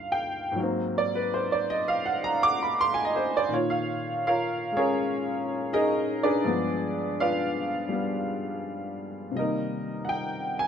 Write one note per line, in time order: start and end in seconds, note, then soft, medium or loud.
0.00 0.57 G2 medium
0.00 0.57 D3 soft
0.00 0.58 A#3 soft
0.00 0.59 F4 medium
0.00 0.59 F5 medium
0.12 0.36 G5 medium
0.52 3.48 G#2 medium
0.56 3.50 F#3 soft
0.56 3.52 A#3 medium
0.63 3.54 C4 medium
0.98 1.14 D5 medium
1.15 1.28 B4 medium
1.34 1.57 C5 medium
1.52 1.79 D5 medium
1.70 1.87 D#5 medium
1.88 2.01 F5 medium
2.06 2.29 F#5 medium
2.24 2.51 A#5 medium
2.43 2.60 D6 loud
2.63 2.75 B5 medium
2.81 2.95 C6 loud
2.94 3.02 G#5 medium
3.05 3.29 D#5 medium
3.16 3.33 C5 medium
3.37 3.49 D5 medium
3.49 6.43 A#2 medium
3.49 6.42 D#3 medium
3.53 4.25 F4 medium
3.53 3.77 C#5 medium
3.70 3.87 F5 medium
4.27 4.74 F4 medium
4.27 4.75 A#4 medium
4.27 4.75 C#5 medium
4.27 4.74 F5 medium
4.72 6.43 G#3 soft
4.77 5.68 C#4 medium
4.77 5.67 G#4 medium
4.77 5.67 A#4 medium
4.77 5.67 C#5 medium
5.73 6.21 D#4 medium
5.73 6.21 G#4 medium
5.73 6.21 A#4 medium
5.73 6.21 D#5 loud
6.23 7.14 D4 medium
6.23 7.14 G#4 medium
6.23 7.14 B4 medium
6.23 7.14 D5 medium
6.45 9.37 G2 medium
6.45 9.37 F3 soft
6.45 9.37 G#3 medium
6.45 7.91 B3 medium
7.20 7.50 F4 medium
7.20 7.50 B4 medium
7.20 7.50 D5 medium
7.20 7.50 F5 medium
7.89 9.34 G3 soft
7.89 9.37 B3 soft
9.31 10.68 C3 soft
9.31 10.68 G3 soft
9.37 10.68 A#3 soft
9.37 10.68 D#4 soft
9.37 10.68 A#4 medium
9.37 10.07 D#5 medium
9.42 10.68 D#3 medium
10.05 10.09 F#5 medium
10.09 10.56 G5 medium
10.59 10.64 G#5 medium